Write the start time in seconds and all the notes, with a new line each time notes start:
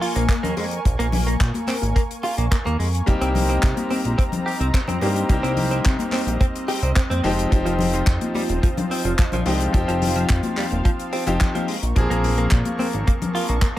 Already playing: A#3 A#4 G#5 C#6
0.01 F4, open hi-hat
0.15 A#1 A#3, closed hi-hat
0.29 A#3, kick, clap, closed hi-hat
0.43 D#2 A#3, closed hi-hat, low conga
0.57 F2 G#3, open hi-hat, high bongo
0.71 closed hi-hat
0.85 A#1, kick, closed hi-hat
0.99 A#1 A#3, closed hi-hat
1.12 open hi-hat, low conga
1.27 A#3, closed hi-hat
1.40 A#2, kick, clap, closed hi-hat
1.54 closed hi-hat, high conga
1.67 C4, clap, open hi-hat, high conga
1.82 G#1, closed hi-hat, high bongo, high conga
1.96 A#3, kick, closed hi-hat
2.11 closed hi-hat
2.23 F4, open hi-hat, high bongo
2.38 A#1 A#3, closed hi-hat
2.51 A#3, kick, clap, closed hi-hat
2.65 D#2 A#3, closed hi-hat, high conga
2.79 F2 G#3, open hi-hat
2.95 closed hi-hat
3.06 C2 G3 A#3 C4 D#4 G4 C5 D#5 A#5, kick, closed hi-hat
3.21 C2 C4, closed hi-hat
3.35 open hi-hat, low conga
3.49 C4, closed hi-hat
3.63 C3, kick, clap, closed hi-hat
3.77 closed hi-hat, high conga
3.90 C4, open hi-hat, high conga
4.05 A#1, closed hi-hat, high bongo
4.18 C4, kick, closed hi-hat
4.32 closed hi-hat, low conga
4.46 G4, open hi-hat
4.60 C2 C4, closed hi-hat
4.74 C4, kick, clap, closed hi-hat
4.88 F2 C4, closed hi-hat, low conga
5.01 G2 G3 A#3 C4 D#4 G4, open hi-hat, high bongo
5.16 closed hi-hat
5.29 C2 G3 A#3 C4 D#4 G4, kick, closed hi-hat
5.43 C2 C4, closed hi-hat
5.57 open hi-hat, low conga
5.71 C4, closed hi-hat
5.85 C3, kick, clap, closed hi-hat
5.99 closed hi-hat, high conga
6.12 C4, clap, open hi-hat, high conga
6.27 A#1, closed hi-hat, high conga
6.41 C4, kick, closed hi-hat
6.56 closed hi-hat
6.68 G4, open hi-hat, high bongo
6.82 C2 C4, closed hi-hat
6.96 C4, kick, clap, closed hi-hat
7.10 F2 C4, closed hi-hat, high conga
7.23 F1 D#3 F3 G#3 C4 D#4 F4 G4, open hi-hat
7.39 closed hi-hat
7.51 F1 F3 C4 D#4 G4, kick, closed hi-hat
7.65 F1 F3, closed hi-hat
7.79 open hi-hat, low conga
7.94 F3, closed hi-hat
8.07 F2, kick, clap, closed hi-hat
8.21 closed hi-hat, high conga
8.35 G3, open hi-hat, high conga
8.49 D#1, closed hi-hat, high bongo
8.63 F3, kick, closed hi-hat
8.77 closed hi-hat, low conga
8.91 C4, open hi-hat
9.05 F1 F3, closed hi-hat
9.18 F3, kick, clap, closed hi-hat
9.32 A#1 F3, closed hi-hat, low conga
9.46 C2 D#3 F3 G#3 C4 D#4 G4 F5, open hi-hat, high bongo
9.60 closed hi-hat
9.72 F1 F3 C4 D#4 G4, kick, closed hi-hat
9.88 F1 F3, closed hi-hat
10.02 open hi-hat, low conga
10.15 F3, closed hi-hat
10.30 F2, kick, clap, closed hi-hat
10.43 closed hi-hat, high conga
10.57 G3, clap, open hi-hat, high conga
10.71 D#1, closed hi-hat, high conga
10.85 F3, kick, closed hi-hat
10.99 closed hi-hat
11.13 C4, open hi-hat, high bongo
11.26 F1 F3 C4 D#4 G4, closed hi-hat
11.40 F3, kick, clap, closed hi-hat
11.55 F3, closed hi-hat, high conga
11.68 G#3 A#3 A#4 C#6, open hi-hat
11.83 A#1, closed hi-hat
11.96 A#1 F3 A#3 C4 G#4, kick, closed hi-hat
12.10 A#1 A#3, closed hi-hat
12.24 open hi-hat, low conga
12.38 A#3, closed hi-hat
12.51 A#2, kick, clap, closed hi-hat
12.65 closed hi-hat, high conga
12.79 C4, open hi-hat, high conga
12.93 G#1, closed hi-hat, high bongo
13.07 A#3, kick, closed hi-hat
13.22 closed hi-hat, low conga
13.35 F4, open hi-hat
13.49 A#1 A#3, closed hi-hat
13.62 A#3, kick, clap, closed hi-hat